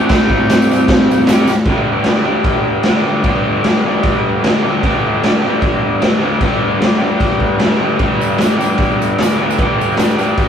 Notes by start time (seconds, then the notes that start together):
Already playing: C3 G3 C4 E4 G4
0.05 G5, crash
0.10 kick, snare, tambourine
0.30 kick
0.49 snare, tambourine, crash
0.62 tambourine
0.71 tambourine
0.88 kick, snare, crash
0.93 tambourine
1.11 tambourine
1.27 C3 G3 C4, snare, tambourine, crash
1.31 E4 G4
1.40 tambourine
1.47 snare, tambourine
1.65 G2 D3 G3 B3 D4, kick, crash
1.70 G4
2.04 G3 B3, snare, crash
2.08 D4 G4
2.25 D4 G4
2.29 G3 B3
2.44 kick, crash
2.83 G2 D3 G3, snare, crash
2.88 B3 D4 G4
3.04 B3 D4 G4
3.09 G3
3.24 G2 D3 G3 B3, kick, crash
3.28 D4 G4
3.64 G3 B3, snare, crash
3.68 D4 G4
3.85 B3 D4 G4
3.89 G3
4.03 kick, crash
4.43 G2 D3 G3 B3, snare, crash
4.47 D4 G4
4.63 B3 D4 G4
4.68 G3
4.82 G2 D3 G3 B3 D4, kick, crash
4.86 G4
5.22 G3 B3 D4, snare, crash
5.26 G4
5.41 B3 D4 G4
5.45 G3
5.62 kick, crash
6.00 G2 D3 G3 B3 D4, snare, crash
6.04 G4
6.20 B3 D4 G4
6.25 G3
6.40 G2 D3 G3 B3 D4 G4, kick, crash
6.79 G3 B3 D4, snare, crash
6.84 G4
6.99 B3 D4 G4
7.03 G3
7.20 kick, crash
7.40 kick
7.59 G2 D3 G3 B3 G4, snare, crash
7.63 D4
7.79 B3 D4 G4
7.84 G3
7.99 G2 D3 G3 B3 D4, kick, crash
8.03 G4
8.21 tambourine
8.31 tambourine
8.38 G3 B3 D4, snare, tambourine, crash
8.44 G4
8.51 tambourine
8.58 B3 D4 G4, tambourine
8.63 G3
8.78 kick, crash
8.82 tambourine
9.02 tambourine
9.18 G2 D3 G3 B3 D4, snare, crash
9.22 G4, tambourine
9.39 B3 D4 G4
9.44 G3
9.50 tambourine
9.58 G2 D3 G3 B3 D4, kick, crash
9.62 G4
9.81 tambourine
9.91 tambourine
9.96 G3 B3 D4, snare, tambourine, crash
10.01 G4
10.11 tambourine
10.17 G3 B3 D4 G4, tambourine
10.29 tambourine
10.37 kick, tambourine, crash